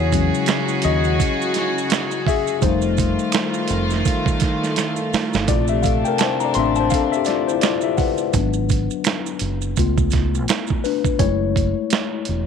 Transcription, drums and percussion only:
0.12 kick, closed hi-hat, maracas
0.35 maracas
0.46 finger snap, snare, closed hi-hat, maracas
0.68 maracas
0.82 closed hi-hat, maracas
1.04 maracas
1.20 kick, closed hi-hat, maracas
1.42 maracas
1.54 snare, closed hi-hat, maracas
1.78 maracas
1.90 finger snap, snare, closed hi-hat, maracas
2.11 maracas
2.27 kick, open hi-hat, maracas
2.47 maracas
2.62 kick, closed hi-hat, maracas
2.82 maracas
2.97 kick, closed hi-hat, maracas
3.19 maracas
3.32 finger snap, snare, closed hi-hat, maracas
3.54 maracas
3.68 closed hi-hat, maracas
3.90 snare, maracas
4.05 kick, closed hi-hat, maracas
4.26 kick, maracas
4.40 kick, snare, closed hi-hat, maracas
4.63 snare, maracas
4.76 finger snap, snare, closed hi-hat, maracas
4.96 maracas
5.13 snare, open hi-hat, maracas
5.33 snare, maracas
5.48 kick, closed hi-hat, maracas
5.68 maracas
5.83 kick, closed hi-hat, maracas
6.05 maracas
6.18 finger snap, snare, closed hi-hat, maracas
6.40 maracas
6.54 closed hi-hat, maracas
6.75 maracas
6.90 kick, closed hi-hat, maracas
7.13 maracas
7.25 snare, closed hi-hat, maracas
7.49 maracas
7.61 finger snap, snare, closed hi-hat, maracas
7.81 maracas
7.98 kick, open hi-hat, maracas
8.18 maracas
8.33 kick, closed hi-hat, maracas
8.53 maracas
8.69 kick, closed hi-hat, maracas
8.91 maracas
9.04 finger snap, snare, closed hi-hat, maracas
9.26 maracas
9.39 closed hi-hat, maracas
9.62 maracas
9.76 kick, closed hi-hat, maracas
9.98 kick, maracas
10.10 kick, snare, closed hi-hat, maracas
10.35 maracas
10.48 finger snap, snare, closed hi-hat, maracas
10.67 kick, maracas
10.84 open hi-hat, maracas
11.04 kick, maracas
11.19 kick, closed hi-hat
11.56 kick, closed hi-hat
11.90 snare, closed hi-hat
12.25 closed hi-hat

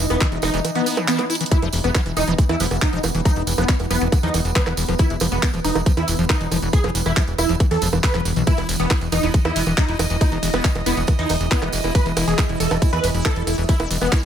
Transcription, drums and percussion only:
0.10 closed hi-hat, high bongo
0.20 kick, clap, closed hi-hat, tambourine
0.32 closed hi-hat, tambourine
0.42 open hi-hat, tambourine, high bongo
0.54 closed hi-hat, tambourine
0.65 closed hi-hat, tambourine, high bongo
0.75 closed hi-hat, tambourine
0.86 open hi-hat, tambourine
0.97 closed hi-hat, tambourine, high bongo
1.08 clap, closed hi-hat, tambourine
1.19 clap, closed hi-hat, tambourine, high bongo
1.30 closed hi-hat, tambourine
1.35 closed hi-hat
1.40 closed hi-hat, tambourine
1.46 closed hi-hat
1.51 kick, closed hi-hat, tambourine
1.62 closed hi-hat, tambourine, high bongo
1.73 open hi-hat, tambourine
1.84 closed hi-hat, tambourine
1.95 kick, clap, closed hi-hat, tambourine, high bongo
2.06 closed hi-hat, tambourine
2.17 open hi-hat, tambourine, high bongo
2.27 closed hi-hat, tambourine
2.38 kick, closed hi-hat, tambourine
2.49 closed hi-hat, tambourine, high bongo
2.60 open hi-hat, tambourine
2.71 closed hi-hat, tambourine, high bongo
2.82 kick, clap, closed hi-hat, tambourine
2.93 closed hi-hat, tambourine
3.03 open hi-hat, tambourine, high bongo
3.15 closed hi-hat, tambourine
3.25 kick, closed hi-hat, tambourine, high bongo
3.36 closed hi-hat, tambourine
3.47 open hi-hat, tambourine
3.58 closed hi-hat, tambourine, high bongo
3.68 kick, clap, closed hi-hat, tambourine
3.79 closed hi-hat, tambourine, high bongo
3.91 open hi-hat, tambourine
4.01 closed hi-hat, tambourine
4.12 kick, closed hi-hat, tambourine, high bongo
4.23 closed hi-hat, tambourine
4.34 open hi-hat, tambourine, high bongo
4.45 closed hi-hat, tambourine
4.55 kick, clap, closed hi-hat, tambourine
4.67 clap, closed hi-hat, tambourine, high bongo
4.77 open hi-hat, tambourine
4.88 closed hi-hat, tambourine, high bongo
4.99 kick, closed hi-hat, tambourine
5.10 closed hi-hat, tambourine
5.20 open hi-hat, tambourine, high bongo
5.32 closed hi-hat, tambourine
5.43 kick, clap, closed hi-hat, tambourine, high bongo
5.54 closed hi-hat, tambourine
5.64 open hi-hat, tambourine
5.75 closed hi-hat, tambourine, high bongo
5.86 kick, closed hi-hat, tambourine
5.97 closed hi-hat, tambourine, high bongo
6.08 open hi-hat, tambourine
6.19 closed hi-hat, tambourine
6.30 kick, clap, closed hi-hat, tambourine, high bongo
6.40 closed hi-hat, tambourine
6.51 open hi-hat, tambourine, high bongo
6.62 closed hi-hat, tambourine
6.73 kick, closed hi-hat, tambourine
6.84 closed hi-hat, tambourine, high bongo
6.95 open hi-hat, tambourine
7.06 closed hi-hat, tambourine, high bongo
7.17 kick, clap, closed hi-hat, tambourine
7.28 closed hi-hat, tambourine
7.38 open hi-hat, tambourine, high bongo
7.49 closed hi-hat, tambourine
7.60 kick, closed hi-hat, tambourine, high bongo
7.71 closed hi-hat, tambourine
7.82 open hi-hat, tambourine
7.93 closed hi-hat, tambourine, high bongo
8.04 kick, clap, closed hi-hat, tambourine
8.14 clap, closed hi-hat, tambourine, high bongo
8.25 open hi-hat, tambourine
8.36 closed hi-hat, tambourine
8.47 kick, closed hi-hat, ride, tambourine
8.57 closed hi-hat, tambourine, high bongo
8.69 open hi-hat, ride, tambourine
8.80 closed hi-hat
8.90 kick, clap, closed hi-hat, ride, tambourine, high bongo
9.01 closed hi-hat, tambourine
9.12 open hi-hat, ride, tambourine, high bongo
9.23 closed hi-hat, tambourine
9.34 kick, closed hi-hat, ride, tambourine
9.45 closed hi-hat, tambourine, high bongo
9.56 open hi-hat, ride, tambourine
9.66 closed hi-hat, tambourine, high bongo
9.78 kick, clap, closed hi-hat, ride
9.88 closed hi-hat, tambourine
9.99 open hi-hat, ride, tambourine, high bongo
10.10 closed hi-hat, tambourine
10.21 kick, closed hi-hat, ride, tambourine, high bongo
10.32 closed hi-hat, tambourine
10.43 open hi-hat, ride, tambourine
10.53 closed hi-hat, tambourine, high bongo
10.64 kick, clap, closed hi-hat, ride, tambourine
10.75 closed hi-hat, tambourine, high bongo
10.86 open hi-hat, ride, tambourine
10.97 closed hi-hat, tambourine
11.07 kick, closed hi-hat, ride, tambourine, high bongo
11.19 closed hi-hat, tambourine
11.29 open hi-hat, ride, tambourine, high bongo
11.41 closed hi-hat, tambourine
11.51 kick, clap, closed hi-hat, ride, tambourine
11.62 clap, closed hi-hat, tambourine, high bongo
11.72 open hi-hat, ride, tambourine
11.84 closed hi-hat, tambourine, high bongo
11.95 kick, closed hi-hat, ride, tambourine
12.06 closed hi-hat, tambourine
12.17 open hi-hat, ride, tambourine, high bongo
12.28 closed hi-hat, tambourine
12.38 kick, clap, closed hi-hat, ride, tambourine, high bongo
12.49 closed hi-hat, tambourine
12.60 open hi-hat, ride, tambourine
12.71 closed hi-hat, tambourine, high bongo
12.82 kick, closed hi-hat, ride, tambourine
12.93 closed hi-hat, tambourine, high bongo
13.04 open hi-hat, ride, tambourine
13.15 closed hi-hat, tambourine
13.25 kick, clap, closed hi-hat, ride, tambourine, high bongo
13.35 closed hi-hat, tambourine
13.47 open hi-hat, ride, tambourine, high bongo
13.58 closed hi-hat, tambourine
13.69 kick, closed hi-hat, ride, tambourine
13.80 closed hi-hat, tambourine, high bongo
13.91 open hi-hat, ride, tambourine
14.01 closed hi-hat, tambourine, high bongo
14.12 kick, clap, closed hi-hat, ride, tambourine

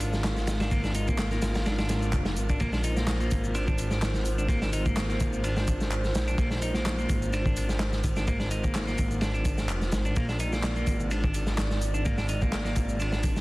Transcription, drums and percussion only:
0.00 open hi-hat, ride, shaker
0.13 snare, shaker
0.24 snare, clap, ride, shaker
0.37 snare, shaker
0.47 snare, open hi-hat, ride, shaker
0.60 snare, ride, shaker
0.71 kick, ride, shaker
0.84 snare, shaker
0.95 open hi-hat, ride, shaker
1.08 kick, shaker
1.18 snare, clap, ride, shaker
1.31 snare, shaker
1.42 snare, open hi-hat, ride, shaker
1.55 snare, ride, shaker
1.66 snare, ride, shaker
1.78 snare, ride, shaker
1.89 snare, open hi-hat, ride, shaker
2.02 shaker
2.13 kick, clap, ride, shaker
2.25 snare, ride, shaker
2.37 open hi-hat, shaker
2.49 kick, ride, shaker
2.60 kick, ride, shaker
2.73 snare, shaker
2.84 open hi-hat, ride, shaker
2.97 snare, shaker
3.07 snare, clap, ride, shaker
3.20 shaker
3.31 kick, open hi-hat, ride, shaker
3.44 shaker
3.55 ride, shaker
3.68 kick, shaker
3.78 open hi-hat, ride, shaker
3.91 snare, shaker
4.02 snare, clap, ride, shaker
4.14 snare, shaker
4.26 open hi-hat, shaker
4.38 shaker
4.49 kick, ride, shaker
4.62 snare, shaker
4.73 open hi-hat, ride, shaker
4.86 kick, shaker
4.96 snare, clap, ride, shaker
5.09 snare, shaker
5.20 kick, open hi-hat, ride, shaker
5.33 shaker
5.44 ride, shaker
5.57 snare, shaker
5.68 kick, open hi-hat, ride, shaker
5.81 snare, shaker
5.91 clap, ride, shaker
6.04 snare, shaker
6.15 snare, open hi-hat, ride, shaker
6.28 ride, shaker
6.38 kick, ride, shaker
6.51 snare, shaker
6.62 open hi-hat, ride, shaker
6.74 snare, shaker
6.85 snare, clap, ride, shaker
6.99 shaker
7.09 kick, open hi-hat, ride, shaker
7.22 shaker
7.33 ride, shaker
7.46 kick, shaker
7.57 open hi-hat, ride, shaker
7.69 snare, shaker
7.80 snare, clap, ride, shaker
7.93 snare, shaker
8.04 kick, open hi-hat, ride, shaker
8.16 snare, shaker
8.28 kick, ride, shaker
8.40 snare, shaker
8.51 open hi-hat, ride, shaker
8.64 kick, shaker
8.74 snare, clap, ride, shaker
8.87 snare, shaker
8.98 kick, open hi-hat, ride, shaker
9.11 shaker
9.21 snare, ride, shaker
9.34 shaker
9.45 kick, open hi-hat, ride, shaker
9.58 snare, shaker
9.69 clap, ride, shaker
9.82 snare, shaker
9.92 snare, open hi-hat, ride, shaker
10.05 ride, shaker
10.16 kick, ride, shaker
10.29 snare, shaker
10.40 open hi-hat, ride, shaker
10.52 snare, shaker
10.63 snare, clap, ride, shaker
10.76 shaker
10.87 kick, open hi-hat, ride, shaker
11.00 shaker
11.11 ride, shaker
11.23 kick, shaker
11.34 open hi-hat, ride, shaker
11.47 snare, shaker
11.58 snare, clap, ride, shaker
11.71 snare, shaker
11.82 open hi-hat, shaker
11.94 shaker
12.05 kick, ride, shaker
12.18 snare, shaker
12.29 open hi-hat, ride, shaker
12.42 kick, shaker
12.52 snare, clap, ride, shaker
12.65 snare, shaker
12.76 kick, open hi-hat, ride, shaker
12.89 shaker
13.00 ride, shaker
13.12 snare, shaker
13.23 kick, open hi-hat, ride, shaker
13.36 snare, shaker

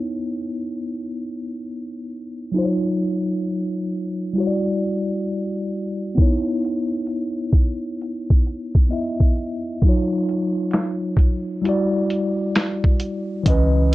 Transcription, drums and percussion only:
6.18 kick, closed hi-hat
6.65 closed hi-hat
7.07 closed hi-hat
7.53 kick, closed hi-hat
8.01 closed hi-hat
8.30 kick
8.46 closed hi-hat
8.75 kick
8.91 closed hi-hat
9.20 kick
9.36 closed hi-hat
9.82 kick, closed hi-hat
10.29 closed hi-hat
10.71 finger snap, snare, closed hi-hat
11.17 kick, closed hi-hat
11.65 closed hi-hat
12.10 closed hi-hat
12.55 finger snap, snare, closed hi-hat
12.84 kick
13.00 closed hi-hat
13.46 kick, closed hi-hat

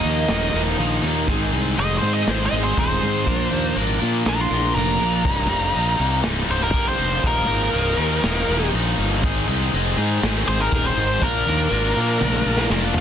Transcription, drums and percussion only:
0.04 open hi-hat
0.28 snare, open hi-hat
0.54 snare, open hi-hat
0.79 open hi-hat
1.03 open hi-hat
1.28 kick, open hi-hat
1.53 open hi-hat
1.78 open hi-hat
2.03 open hi-hat
2.27 snare, open hi-hat
2.53 open hi-hat
2.77 kick, open hi-hat
3.02 open hi-hat
3.27 kick, open hi-hat
3.52 open hi-hat
3.76 open hi-hat
4.02 open hi-hat
4.26 snare, open hi-hat
4.51 snare, open hi-hat
4.75 open hi-hat
5.01 open hi-hat
5.25 kick, open hi-hat
5.50 open hi-hat
5.75 open hi-hat
5.99 open hi-hat
6.24 snare, open hi-hat
6.49 open hi-hat
6.74 kick, open hi-hat
6.98 open hi-hat
7.24 kick, open hi-hat
7.49 open hi-hat
7.74 open hi-hat
7.98 open hi-hat
8.24 snare, open hi-hat
8.48 snare, open hi-hat
8.74 open hi-hat
8.99 open hi-hat
9.23 kick, open hi-hat
9.49 open hi-hat
9.74 open hi-hat
9.98 open hi-hat
10.23 snare, open hi-hat
10.48 open hi-hat
10.72 kick, open hi-hat
10.97 open hi-hat
11.22 kick, open hi-hat
11.47 open hi-hat
11.72 open hi-hat
11.96 open hi-hat
12.21 high tom
12.33 high tom
12.57 snare
12.70 snare
12.94 floor tom

